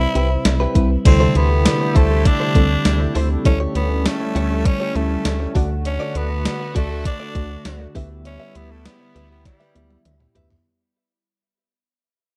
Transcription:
Already playing: fm electric piano C3 G3 C4 E4 B4 C5, tenor saxophone E4
0.00 muted clean electric guitar stroke
0.15 analog synth bass C2, clean electric guitar E4 G4 B4, closed hi-hat
0.30 muted clean electric guitar stroke
0.45 analog synth bass C2, muted clean electric guitar stroke, snare, closed hi-hat, cowbell
0.60 clean electric guitar E4 G4 B4
0.75 analog synth bass C2, fm electric piano G3 C4 E4 B4, clean electric guitar E4 G4 B4, kick, closed hi-hat
0.90 muted clean electric guitar stroke
1.05 analog synth bass D2, fm electric piano C3 D3 G3 E4 A4, analog synth pad D3 A3 E4 G4, tenor saxophone C4, muted clean electric guitar stroke, kick, closed hi-hat, crash, cowbell
1.20 clean electric guitar E4 A4 C5
1.35 analog synth bass D2, tenor saxophone B3, clean electric guitar E4 A4 C5, closed hi-hat
1.50 muted clean electric guitar stroke
1.65 muted clean electric guitar stroke, snare, closed hi-hat, tambourine, cowbell
1.80 muted clean electric guitar stroke
1.95 analog synth bass D2, tenor saxophone A3, clean electric guitar E4 A4 C5, kick, closed hi-hat
2.10 clean electric guitar E4 A4 C5
2.25 tenor saxophone D4, muted clean electric guitar stroke, kick, closed hi-hat, cowbell
2.40 clean electric guitar E4 A4 C5
2.55 analog synth bass D2, fm electric piano G3 C4 E4 A4, kick, closed hi-hat
2.70 muted clean electric guitar stroke
2.85 analog synth bass D2, snare, closed hi-hat, tambourine, cowbell
3.00 muted clean electric guitar stroke
3.15 analog synth bass D2, clean electric guitar E4 A4 C5, open hi-hat
3.30 muted clean electric guitar stroke
3.45 analog synth bass D2, fm electric piano D3 G3 C#4 E4 A4, analog synth pad G3 C#4, tenor saxophone C#4, muted clean electric guitar stroke, kick, closed hi-hat, cowbell
3.60 clean electric guitar E4 G4 C#5
3.75 analog synth bass D2, tenor saxophone B3, clean electric guitar E4 G4 C#5, closed hi-hat
3.90 muted clean electric guitar stroke
4.05 tenor saxophone A3, muted clean electric guitar stroke, snare, closed hi-hat, tambourine, cowbell
4.20 muted clean electric guitar stroke
4.35 analog synth bass D2, clean electric guitar E4 G4 C#5, closed hi-hat
4.50 clean electric guitar E4 G4 C#5
4.65 tenor saxophone C#4, muted clean electric guitar stroke, kick, closed hi-hat, cowbell
4.80 clean electric guitar E4 G4 C#5
4.95 analog synth bass D2, fm electric piano G3 C#4 E4 A4, tenor saxophone A3, muted clean electric guitar stroke, closed hi-hat
5.10 muted clean electric guitar stroke
5.25 analog synth bass D2, snare, closed hi-hat, tambourine, cowbell
5.40 muted clean electric guitar stroke
5.55 analog synth bass D2, analog synth pad D3 F#4, fm electric piano D3 A3 F#4 F#5, clean electric guitar F#4 A4 D5, kick, open hi-hat
5.70 muted clean electric guitar stroke
5.85 tenor saxophone C#4, muted clean electric guitar stroke, closed hi-hat, cowbell
6.00 clean electric guitar F#4 A4 D5
6.15 analog synth bass D2, tenor saxophone B3, clean electric guitar F#4 A4 D5, closed hi-hat
6.30 muted clean electric guitar stroke
6.45 muted clean electric guitar stroke, snare, closed hi-hat, tambourine, cowbell
6.60 muted clean electric guitar stroke
6.75 analog synth bass D2, tenor saxophone A3, clean electric guitar F#4 A4 D5, kick, closed hi-hat
6.90 clean electric guitar F#4 A4 D5
7.05 tenor saxophone D4, muted clean electric guitar stroke, kick, closed hi-hat, cowbell
7.20 clean electric guitar F#4 A4 D5
7.35 analog synth bass D2, fm electric piano A3 D4 F#4 D5, muted clean electric guitar stroke, kick, closed hi-hat
7.50 muted clean electric guitar stroke
7.65 analog synth bass D2, snare, closed hi-hat, tambourine, cowbell
7.80 muted clean electric guitar stroke
7.95 analog synth bass D2, fm electric piano D3 B3 E4 G4 E5, analog synth pad G3 B3 E4, clean electric guitar G4 B4 E5, kick, open hi-hat
8.10 muted clean electric guitar stroke
8.25 tenor saxophone C#4, muted clean electric guitar stroke, closed hi-hat, cowbell
8.40 clean electric guitar G4 B4 E5
8.55 analog synth bass D2, tenor saxophone B3, clean electric guitar G4 B4 E5, closed hi-hat
8.70 tenor saxophone A3, muted clean electric guitar stroke
8.85 tenor saxophone B3, muted clean electric guitar stroke, snare, closed hi-hat, tambourine, cowbell
9.00 muted clean electric guitar stroke
9.15 analog synth bass D2, clean electric guitar G4 B4 E5, closed hi-hat
9.30 tenor saxophone B3, clean electric guitar G4 B4 E5
9.45 tenor saxophone G3, muted clean electric guitar stroke, kick, snare, closed hi-hat, cowbell
9.60 clean electric guitar G4 B4 E5, snare
9.75 analog synth bass D2, fm electric piano B3 E4 G4 E5, muted clean electric guitar stroke, closed hi-hat, high tom
9.90 muted clean electric guitar stroke, high tom
10.05 analog synth bass D2, closed hi-hat, mid tom, cowbell
10.20 muted clean electric guitar stroke, mid tom
10.35 analog synth bass D2, clean electric guitar G4 B4 E5, closed hi-hat, floor tom
10.50 floor tom

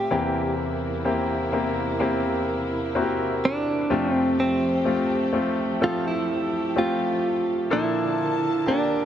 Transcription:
Already playing: grand piano A3 C4 F4 G4, clean electric guitar G4
0.09 string section E2 C3 A#3 E4, grand piano E2 E3 A#3 C4 E4 G4
1.05 grand piano A#3 C4 E4 G4
1.52 grand piano A#3 C4 E4 G4
2.00 grand piano A#3 C4 E4 G4
2.95 grand piano A#3 C4 E4 F#4
3.02 grand piano G4
3.45 clean electric guitar D4
3.90 grand piano F2 C3 A3 C4 F4 G4, string section F3 A3 G4
4.14 clean electric guitar C4
4.40 clean electric guitar C4
4.85 grand piano A3 C4 F4 G4
5.33 grand piano A3 C4 F4 G4
5.81 grand piano F3 A3 C4 A4, clean electric guitar F4, string section G4
6.08 clean electric guitar E4
6.76 grand piano A3 C4 F4 G4, clean electric guitar F4
7.70 grand piano A#2 F3 A#3 D4 A4, string section D3 A#3 A5, clean electric guitar E4
8.66 grand piano A#3 D4 F4 G4, clean electric guitar D4

